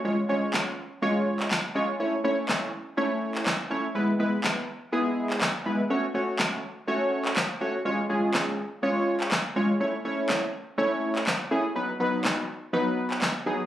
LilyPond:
<<
  \new Staff \with { instrumentName = "Synth keys" } { \time 4/4 \key cis \minor \tempo 4 = 123 <gis cis' eis' cis''>8 <gis cis' eis' cis''>4 r8 <gis cis' eis' cis''>4 r8 <gis cis' eis' cis''>8 | <a cis' e' cis''>8 <a cis' e' cis''>4 r8 <a cis' e' cis''>4 r8 <a cis' e' cis''>8 | <gis b e' b'>8 <gis b e' b'>4 r8 <gis b e' gis'>4 r8 <gis b e' b'>8 | <a cis' fis' cis''>8 <a cis' fis' cis''>4 r8 <a cis' fis' cis''>4 r8 <a cis' fis' cis''>8 |
<gis cis' eis' cis''>8 <gis cis' eis' gis'>4 r8 <gis cis' eis' cis''>4 r8 <gis cis' eis' cis''>8 | <a cis' e' cis''>8 <a cis' e' cis''>4 r8 <a cis' e' cis''>4 r8 <a cis' e' gis'>8 | <fis b dis' b'>8 <fis b dis' b'>4 r8 <fis b dis' b'>4 r8 <fis b dis' gis'>8 | }
  \new DrumStaff \with { instrumentName = "Drums" } \drummode { \time 4/4 r4 <hc sn>4 r8. hc16 <hc sn>4 | r4 <hc sn>4 r8. hc16 <hc sn>4 | r4 <hc sn>4 r8. hc16 <hc sn>4 | r4 <hc sn>4 r8. hc16 <hc sn>4 |
r4 <hc sn>4 r8. hc16 <hc sn>4 | r4 <hc sn>4 r8. hc16 <hc sn>4 | r4 <hc sn>4 r8. hc16 <hc sn>4 | }
>>